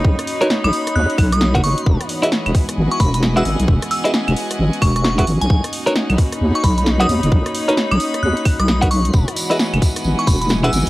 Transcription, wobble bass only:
X:1
M:4/4
L:1/16
Q:"Swing 16ths" 1/4=132
K:Elyd
V:1 name="Wobble bass" clef=bass
B,,, z4 B,,, z2 D,, z B,,,3 F,,, F,,, z | E,,, z4 E,,, z2 G,,, z E,,,4 G,,, B,,, | E,,, z4 E,,, z2 G,,, z E,,,4 G,,, B,,, | B,,, z4 B,,, z2 D,, z B,,,4 D,, F,,, |
B,,, z4 B,,, z2 D,, z2 B,,,4- B,,, | E,,, z4 E,,, z2 G,,, z E,,,4 G,,, z |]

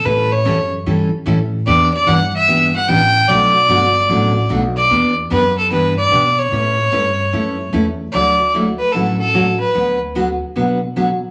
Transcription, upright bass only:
X:1
M:4/4
L:1/8
Q:"Swing" 1/4=148
K:D
V:1 name="Upright bass" clef=bass
A,,2 F,,2 G,, z A,,2 | E,,2 G,,2 G,,,2 A,,,2 | B,,,2 G,,,2 A,,,2 B,,,2 | E,,2 F,,2 G,,2 B,,2 |
A,,2 G,,2 F,,2 E,,2 | D,,4 A,,,4 | D,,4 B,,4 |]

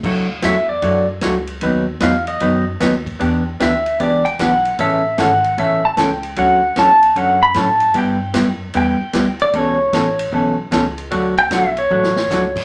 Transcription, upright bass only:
X:1
M:4/4
L:1/8
Q:"Swing" 1/4=152
K:D
V:1 name="Upright bass" clef=bass
D,,2 E,,2 F,,2 C,,2 | ^D,,2 E,,2 F,,2 D,,2 | E,,2 D,,2 C,,2 B,,,2 | A,,,2 ^G,,,2 A,,,2 C,,2 |
D,,2 E,,2 F,,2 A,,2 | G,,2 F,,2 E,, z D,,2 | C,,2 A,,,2 B,,,2 C,,2 | D,,2 B,,,2 A,,,2 C,,2 |]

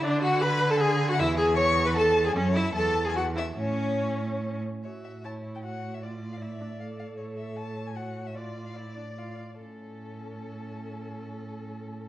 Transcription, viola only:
X:1
M:3/4
L:1/16
Q:1/4=149
K:A
V:1 name="Viola"
D2 F2 B3 A G3 F | E2 G2 c3 B A3 G | C2 E2 A3 G F2 E2 | C8- C2 z2 |
F4 E4 F4 | =F4 E2 D2 A4- | A8 F4 | =F4 E2 D2 F2 z2 |
C12- | C12 |]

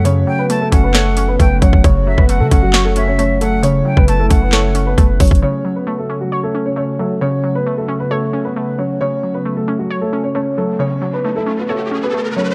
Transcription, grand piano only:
X:1
M:4/4
L:1/16
Q:1/4=134
K:F#m
V:1 name="Grand piano"
[Cc]3 [B,B]2 [A,A]2 [B,B] [A,A]3 [B,B]3 [Cc]2 | [Cc]3 [B,B]2 [A,A]2 [F,F]2 [A,A]2 [Cc] [Cc]2 [A,A]2 | [Cc]3 [B,B]2 [A,A]2 [B,B] [A,A]3 [B,B]3 [Cc]2 | [Cc]3 [B,B]2 [A,A]2 [F,F]2 [A,A]2 [Cc] [Cc]2 [A,A]2 |
[Cc]3 [B,B]2 [A,A]2 [B,B] [A,A]3 [B,B]3 [Cc]2 | [Cc]3 [B,B]2 [A,A]2 [F,F]2 [A,A]2 [Cc] [Cc]2 [A,A]2 | [Cc]3 [B,B]2 [A,A]2 [B,B] [A,A]3 [B,B]3 [Cc]2 |]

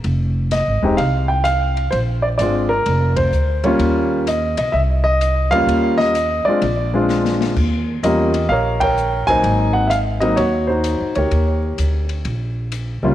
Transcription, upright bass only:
X:1
M:4/4
L:1/8
Q:"Swing" 1/4=128
K:Ebmix
V:1 name="Upright bass" clef=bass
F,,,2- (3F,,, A,,, _F,,, C,,4 | B,,,2 A,,,2 F,,,2 =D,,2 | E,,3 _C,, =C,,3 =D,, | E,,3 z B,,,4 |
E,,2 _F,,2 B,,,3 B,,, | A,,,4 E,,2- (3E,, _G,, =D,, | E,,2 =D,,2 B,,,3 _D,, |]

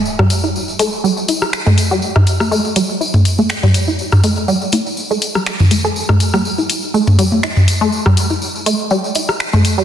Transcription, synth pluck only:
X:1
M:4/4
L:1/16
Q:"Swing 16ths" 1/4=122
K:Clyd
V:1 name="Synth pluck"
z G, z E z2 A, z G, z E z2 A, z G, | z E z2 A, z G, z E z2 A, z G, z E | z2 A, z G, z E z2 A, z G, z E, A, A | z A, z G, z E z2 A, z G, z E z2 A, |
z G, z E z2 A, z G, z E z2 A, z G, |]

